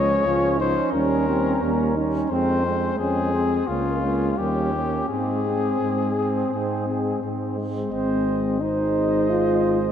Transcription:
0.00 0.17 C#2 medium
0.00 0.25 F3 soft
0.00 0.27 G#3 soft
0.00 0.25 C#4 soft
0.00 0.57 C#5 medium
0.26 0.77 C#2 medium
0.26 0.59 F3 soft
0.26 0.59 C#4 soft
0.26 0.60 F4 medium
0.59 0.93 F3 soft
0.59 0.94 C#4 soft
0.59 0.93 D#4 medium
0.59 0.92 C5 medium
0.92 1.54 D#2 medium
0.92 1.28 G3 soft
0.92 1.27 C#4 soft
0.92 1.28 C#4 soft
0.92 1.94 A#4 medium
1.28 1.62 G3 soft
1.28 1.65 C4 medium
1.28 1.62 C#4 soft
1.62 2.22 D#2 soft
1.62 1.96 G3 soft
1.62 1.96 A#3 soft
1.62 1.96 C#4 soft
1.97 2.30 G3 soft
1.97 2.31 C#4 soft
1.97 2.30 D#4 soft
2.30 2.91 F2 medium
2.30 2.64 G#3 soft
2.30 2.64 C4 medium
2.30 2.65 C4 soft
2.30 2.95 C5 medium
2.64 2.98 G#3 soft
2.64 3.01 G#3 soft
2.64 2.99 C4 soft
2.98 3.60 F2 soft
2.98 3.33 G#3 soft
2.98 3.33 C4 soft
2.98 3.35 C#4 soft
2.98 3.69 G#4 medium
3.34 3.67 G#3 soft
3.34 3.68 C4 soft
3.68 4.31 C#2 medium
3.68 4.02 A#3 soft
3.68 4.03 C#4 soft
3.68 4.39 F4 medium
4.03 4.40 G#3 soft
4.03 4.37 A#3 soft
4.03 4.38 C#4 soft
4.38 5.01 D#2 soft
4.38 4.75 G3 soft
4.38 4.72 A#3 soft
4.38 4.73 C#4 soft
4.38 5.08 G4 medium
4.73 5.07 A#3 soft
4.73 5.08 A#3 soft
4.73 5.08 C#4 soft
5.08 5.72 G#2 soft
5.08 5.43 G#3 soft
5.08 7.52 C4 soft
5.08 5.44 C4 soft
5.08 7.17 G#4 medium
5.44 5.79 G#3 soft
5.44 5.79 C4 soft
5.80 6.43 G#2 soft
5.80 6.14 G#3 soft
5.80 6.15 C4 soft
6.15 6.50 G#3 soft
6.15 6.50 C4 soft
6.51 7.13 G#2 soft
6.51 6.85 G#3 soft
6.51 6.87 C4 soft
6.87 7.21 G#3 soft
6.87 7.21 C4 soft
7.22 7.83 G#2 soft
7.22 7.56 G#3 soft
7.22 7.57 C4 soft
7.57 7.91 G#3 soft
7.57 7.92 C4 soft
7.90 9.92 G#1 soft
7.90 8.56 G#3 soft
7.90 8.62 C4 medium
7.90 8.45 C5 soft
7.90 8.55 D#5 soft
8.60 9.92 G#3 soft
8.60 9.31 D#4 medium
8.60 9.92 C5 soft
8.60 9.92 D#5 soft
9.30 9.80 F4 medium

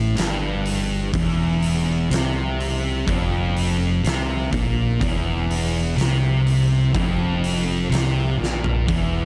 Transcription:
0.00 0.13 A1 loud
0.00 0.15 A2 medium
0.17 1.10 G1 medium
0.17 1.12 G2 medium
0.17 snare loud
0.17 open hi-hat medium
0.66 open hi-hat medium
1.13 2.06 E1 medium
1.13 2.08 E2 loud
1.13 kick loud
1.13 open hi-hat medium
1.62 open hi-hat medium
2.09 3.03 C2 medium
2.09 3.05 C3 loud
2.09 open hi-hat medium
2.14 snare loud
2.60 open hi-hat medium
3.06 4.00 F1 loud
3.06 4.02 F2 medium
3.06 kick loud
3.06 open hi-hat medium
3.57 open hi-hat medium
4.03 4.49 C2 medium
4.03 4.50 C3 loud
4.03 snare loud
4.03 open hi-hat medium
4.51 4.97 A#1 medium
4.51 4.99 A#2 loud
4.51 kick loud
4.51 open hi-hat medium
5.00 5.94 E1 medium
5.00 5.96 E2 loud
5.00 kick loud
5.00 open hi-hat medium
5.51 open hi-hat medium
5.96 6.90 C2 medium
5.96 6.92 C3 loud
5.96 open hi-hat medium
6.01 snare loud
6.47 open hi-hat medium
6.92 7.87 F1 loud
6.92 7.88 F2 medium
6.92 kick loud
6.92 open hi-hat medium
7.44 open hi-hat medium
7.89 8.36 C2 medium
7.89 8.37 C3 loud
7.89 open hi-hat medium
7.95 snare loud
8.38 8.85 A#1 medium
8.38 8.85 A#2 loud
8.43 snare medium
8.64 floor tom medium
8.87 9.25 E1 medium
8.87 9.25 E2 loud
8.87 kick loud
8.87 open hi-hat medium

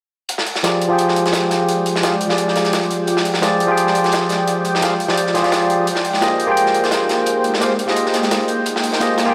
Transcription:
0.29 5.83 G#3 medium
0.29 5.83 F4 medium
0.29 5.83 D5 medium
0.29 9.35 G5 medium
0.29 closed hi-hat medium
0.38 snare soft
0.47 closed hi-hat medium
0.47 open hi-hat medium
0.55 snare soft
0.63 0.87 F3 medium
0.63 0.88 F4 medium
0.63 0.88 G4 medium
0.63 0.89 G#4 medium
0.63 0.89 D5 medium
0.63 snare loud
0.63 closed hi-hat medium
0.82 closed hi-hat medium
0.88 2.00 F3 medium
0.88 2.01 F4 medium
0.88 2.01 G4 medium
0.88 2.02 G#4 medium
0.93 2.03 G5 medium
0.98 closed hi-hat medium
1.09 snare soft
1.16 closed hi-hat medium
1.26 snare soft
1.26 closed hi-hat soft
1.33 snare loud
1.33 closed hi-hat medium
1.51 snare soft
1.51 closed hi-hat medium
1.69 closed hi-hat medium
1.86 closed hi-hat medium
1.96 snare soft
2.02 2.13 F3 medium
2.02 2.14 F4 medium
2.02 2.14 G4 medium
2.02 2.14 G#4 medium
2.02 2.14 F5 medium
2.02 snare loud
2.02 closed hi-hat medium
2.21 closed hi-hat medium
2.28 3.40 F3 medium
2.28 3.40 F4 medium
2.28 3.41 G4 medium
2.28 3.42 G#4 medium
2.28 snare soft
2.32 3.42 D5 medium
2.38 closed hi-hat medium
2.48 snare soft
2.56 snare soft
2.56 closed hi-hat medium
2.65 snare soft
2.65 closed hi-hat soft
2.73 snare loud
2.73 closed hi-hat medium
2.83 closed hi-hat soft
2.91 closed hi-hat medium
3.07 closed hi-hat medium
3.17 snare medium
3.25 closed hi-hat medium
3.25 open hi-hat medium
3.34 snare soft
3.42 3.65 F3 medium
3.42 3.67 F4 medium
3.42 3.67 G4 medium
3.42 3.68 G#4 medium
3.42 3.68 D5 medium
3.42 snare loud
3.42 closed hi-hat medium
3.60 closed hi-hat medium
3.67 4.79 F3 medium
3.67 4.80 F4 medium
3.67 4.80 G4 medium
3.67 4.81 G#4 medium
3.72 4.82 G5 medium
3.77 closed hi-hat medium
3.87 snare soft
3.95 closed hi-hat medium
4.04 snare soft
4.04 closed hi-hat soft
4.12 snare loud
4.12 closed hi-hat medium
4.29 snare soft
4.29 closed hi-hat medium
4.48 closed hi-hat medium
4.65 closed hi-hat medium
4.75 snare medium
4.81 4.92 F3 medium
4.81 4.93 F4 medium
4.81 4.93 G4 medium
4.81 4.93 G#4 medium
4.81 4.94 F5 medium
4.81 snare medium
4.81 closed hi-hat medium
5.00 closed hi-hat medium
5.08 5.33 F3 medium
5.08 5.33 F4 medium
5.08 5.33 G4 medium
5.08 5.34 G#4 medium
5.08 5.34 D5 medium
5.08 snare medium
5.17 closed hi-hat medium
5.27 snare soft
5.34 5.41 F3 medium
5.34 5.42 F4 medium
5.34 5.43 G4 medium
5.34 5.43 G#4 medium
5.34 5.43 C5 medium
5.34 snare soft
5.34 closed hi-hat medium
5.42 5.85 F3 medium
5.42 5.86 F4 medium
5.42 5.86 G4 medium
5.42 5.87 G#4 medium
5.42 snare soft
5.42 closed hi-hat soft
5.47 5.88 D5 medium
5.52 snare loud
5.52 closed hi-hat medium
5.62 closed hi-hat soft
5.70 closed hi-hat medium
5.87 9.35 G#3 medium
5.87 9.35 A#3 medium
5.87 9.35 D#4 medium
5.87 8.63 C5 medium
5.87 closed hi-hat medium
5.95 snare soft
6.04 closed hi-hat medium
6.04 open hi-hat medium
6.13 snare soft
6.21 6.46 A#3 medium
6.21 6.46 F4 medium
6.21 6.47 G4 medium
6.21 6.47 G#4 medium
6.21 6.47 C5 medium
6.21 6.47 D#5 medium
6.21 snare loud
6.21 closed hi-hat medium
6.40 closed hi-hat medium
6.47 7.59 A#3 medium
6.47 7.59 F4 medium
6.47 7.60 G4 medium
6.47 7.60 G#4 medium
6.51 7.61 C5 medium
6.51 7.61 G5 loud
6.57 closed hi-hat medium
6.66 snare soft
6.74 closed hi-hat medium
6.84 snare soft
6.84 closed hi-hat soft
6.91 snare loud
6.91 closed hi-hat medium
7.09 snare soft
7.09 closed hi-hat medium
7.26 closed hi-hat medium
7.44 closed hi-hat medium
7.54 snare soft
7.61 7.72 A#3 medium
7.61 7.72 F4 medium
7.61 7.72 G4 medium
7.61 7.73 G#4 medium
7.61 7.73 C5 medium
7.61 7.73 F5 medium
7.61 snare loud
7.61 closed hi-hat medium
7.79 closed hi-hat medium
7.86 8.98 A#3 medium
7.86 8.98 F4 medium
7.86 8.99 G4 medium
7.86 8.99 G#4 medium
7.86 9.00 C5 medium
7.86 snare soft
7.91 9.00 D#5 medium
7.96 closed hi-hat medium
8.06 snare soft
8.14 snare soft
8.14 closed hi-hat medium
8.23 snare soft
8.23 closed hi-hat soft
8.31 snare loud
8.31 closed hi-hat medium
8.41 closed hi-hat soft
8.48 closed hi-hat medium
8.66 9.35 A#4 medium
8.66 closed hi-hat medium
8.76 snare soft
8.83 closed hi-hat medium
8.83 open hi-hat medium
8.93 snare soft
9.00 9.24 A#3 medium
9.00 9.25 F4 medium
9.00 9.25 G4 medium
9.00 9.26 G#4 medium
9.00 9.26 C5 medium
9.00 9.26 D#5 medium
9.00 snare loud
9.00 closed hi-hat medium
9.18 snare medium
9.18 closed hi-hat medium
9.25 9.35 A#3 medium
9.25 9.35 F4 medium
9.25 9.35 G4 medium
9.25 9.35 G#4 medium
9.25 9.35 C5 medium
9.30 9.35 G5 loud

